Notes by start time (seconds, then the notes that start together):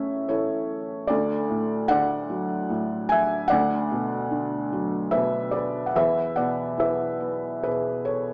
Already playing: A2 E3 A3 C#4 A4 C#5 E5
0.28 E3 A4 C#5
1.07 D2 A4 D5
1.49 A2
1.88 D3 D5 F#5
2.30 F#3
2.70 A2
3.09 E5 G#5
3.48 D2 D5 F#5
3.91 B2
4.31 D3
4.72 F#3
5.11 B2 B4 E5
5.51 B4 D5
5.86 F#5
5.95 E2 B4 E5
6.36 B2 D5 F#5
6.77 E3 B4 E5
7.20 B3
7.63 B2 G#4 B4
8.05 A4 C#5